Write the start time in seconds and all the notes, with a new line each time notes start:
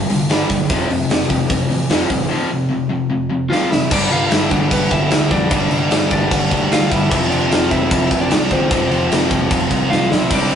0.09 C2 G2 D3, open hi-hat
0.30 G1 G2 D3 G3, snare, open hi-hat
0.50 B1 G2 D3, kick, open hi-hat
0.69 F1 F2 C3 F3, kick, open hi-hat
0.89 F1 F2 C3, open hi-hat
1.09 F1 F2 C3, snare, open hi-hat
1.30 F1 F2 C3, kick, open hi-hat
1.50 F1 F2 C3, kick, open hi-hat
1.70 A1 F2 C3, open hi-hat
1.88 F1 F2 C3 F3, snare, open hi-hat
2.10 A1 F2 C3, kick, open hi-hat
2.29 F2 C3 F3
2.50 F2 C3
2.70 F2 C3
2.89 F2 C3
3.10 F2 C3
3.31 F2 C3
3.50 F2 C3 F3 F4 F5, snare
3.70 F2 C3 E4 E5, snare
3.91 G1 G2 D3 G3 D4 D5, kick, crash
4.11 G1 F4 F5, crash
4.30 G1 E4 E5, snare, crash
4.51 G1 D4 D5, kick, crash
4.71 G1 B3 B4, kick, crash
4.91 G1 E4 E5, kick, crash
5.11 D2, snare, crash
5.30 F2 G2 D3 G3 D4 D5, kick, crash
5.51 G1 G2 D3 G3, kick, crash
5.70 G1, crash
5.91 G1, snare, crash
6.11 G1 D4 D5, kick, crash
6.31 G1, kick, crash
6.51 D2, kick, crash
6.71 D2 F4 F5, snare, crash
6.90 G1 G2 D3 G3 E4 E5, kick, crash
7.10 F1 F2 C3 F3, kick, crash
7.30 F1 D4 D5, crash
7.51 F1 F4 F5, snare, crash
7.71 F1 E4 E5, kick, crash
7.91 F1, kick, crash
8.11 F1, kick, crash
8.21 D4 D5
8.31 C2, snare, crash
8.49 D2 C3 F3 C4 C5, kick, crash
8.54 F2
8.69 F1 F2 C3 F3, kick, crash
8.91 F1, crash
9.11 F1, snare, crash
9.31 F1, kick, crash
9.51 F1, kick, crash
9.71 C2, kick, crash
9.90 C2 F4 F5, snare
10.09 B1 F2 C3 F3 E4 E5, snare
10.30 C2 C3 G3 C4, kick, splash, crash
10.34 D4 D5
10.50 C2, crash